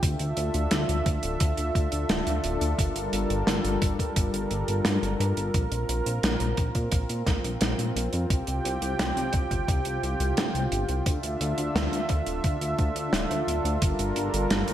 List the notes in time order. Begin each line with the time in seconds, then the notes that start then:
Already playing: F4
0.03 D2 D3 D4 A4 E5, kick, closed hi-hat
0.19 D2, closed hi-hat
0.37 D2, closed hi-hat
0.54 D2, closed hi-hat
0.71 D2, snare, closed hi-hat
0.89 D2, closed hi-hat
1.06 D2, kick, closed hi-hat
1.23 D1, closed hi-hat
1.40 D2, kick, closed hi-hat
1.57 D2, closed hi-hat
1.75 D2, kick, closed hi-hat
1.92 D2, closed hi-hat
2.09 D1, snare, closed hi-hat
2.27 D2, closed hi-hat
2.44 D1, closed hi-hat
2.61 D2, closed hi-hat
2.78 G1 G3 A#4, kick, closed hi-hat
2.96 G1, closed hi-hat
3.13 G1, closed hi-hat
3.30 G1, closed hi-hat
3.47 G1, snare, closed hi-hat
3.65 G1, closed hi-hat
3.82 G1, kick, closed hi-hat
3.99 G2, kick, closed hi-hat
4.16 G1, kick, closed hi-hat
4.34 G1, closed hi-hat
4.51 G1, closed hi-hat
4.68 G1, closed hi-hat
4.85 G2, snare, closed hi-hat
5.03 G1, closed hi-hat
5.20 G2, closed hi-hat
5.37 G1, closed hi-hat
5.54 A#1 C4 F4, kick, closed hi-hat
5.72 A#1, closed hi-hat
5.89 A#1, closed hi-hat
6.06 A#1, closed hi-hat
6.23 A#1, snare, closed hi-hat
6.40 A#1, closed hi-hat
6.57 A#1, kick, closed hi-hat
6.75 A#2, kick, closed hi-hat
6.92 A#1, kick, closed hi-hat
7.09 A#2, closed hi-hat
7.26 A#1, kick, snare, closed hi-hat
7.44 A#1, closed hi-hat
7.61 A#1, snare, closed hi-hat
7.79 A#1, closed hi-hat
7.96 A#1, closed hi-hat
8.13 F2, closed hi-hat
8.30 C2 C3 G4 G5, kick, closed hi-hat
8.47 C2, closed hi-hat
8.65 C2, closed hi-hat
8.82 C2, closed hi-hat
8.99 C2, snare, closed hi-hat
9.17 C2, closed hi-hat
9.33 C2, kick, closed hi-hat
9.51 G1, kick, closed hi-hat
9.68 C2, kick, closed hi-hat
9.85 C2, closed hi-hat
10.03 C2, closed hi-hat
10.20 C2, closed hi-hat
10.37 G1, snare, closed hi-hat
10.55 C2, closed hi-hat
10.72 G1, closed hi-hat
10.89 C2, closed hi-hat
11.06 D2 D3 D4 A4 E5, kick, closed hi-hat
11.23 D2, closed hi-hat
11.41 D2, closed hi-hat
11.58 D2, closed hi-hat
11.75 D2, snare, closed hi-hat
11.93 D2, closed hi-hat
12.09 D2, kick, closed hi-hat
12.26 D1, closed hi-hat
12.44 D2, kick, closed hi-hat
12.61 D2, closed hi-hat
12.79 D2, kick, closed hi-hat
12.96 D2, closed hi-hat
13.13 D1, snare, closed hi-hat
13.30 D2, closed hi-hat
13.47 D1, closed hi-hat
13.65 D2, closed hi-hat
13.82 G1 G3 A#4, kick, closed hi-hat
13.99 G1, closed hi-hat
14.16 G1, closed hi-hat
14.34 G1, closed hi-hat
14.50 G1, snare, closed hi-hat
14.68 G1, closed hi-hat